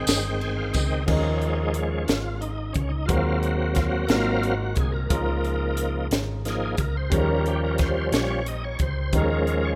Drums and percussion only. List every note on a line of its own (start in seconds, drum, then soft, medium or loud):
0.07 snare medium
0.07 ride medium
0.07 tambourine medium
0.41 ride soft
0.73 kick loud
0.73 ride soft
0.73 tambourine medium
1.08 kick medium
1.08 crash medium
1.42 closed hi-hat soft
1.74 closed hi-hat soft
2.08 snare medium
2.08 closed hi-hat medium
2.42 closed hi-hat soft
2.74 kick medium
2.74 closed hi-hat soft
3.09 kick loud
3.09 closed hi-hat medium
3.43 closed hi-hat soft
3.75 kick medium
3.75 snare soft
3.75 closed hi-hat soft
4.09 snare medium
4.09 closed hi-hat medium
4.43 closed hi-hat soft
4.76 kick medium
4.76 closed hi-hat soft
5.10 kick loud
5.10 closed hi-hat medium
5.44 closed hi-hat soft
5.77 closed hi-hat medium
6.11 snare medium
6.11 closed hi-hat medium
6.45 snare soft
6.45 closed hi-hat soft
6.77 kick medium
6.77 closed hi-hat soft
7.12 kick loud
7.12 closed hi-hat medium
7.46 closed hi-hat soft
7.78 kick medium
7.78 snare soft
7.78 closed hi-hat medium
8.12 snare medium
8.12 closed hi-hat medium
8.46 closed hi-hat soft
8.79 kick medium
8.79 closed hi-hat soft
9.13 kick loud
9.13 closed hi-hat medium
9.47 closed hi-hat soft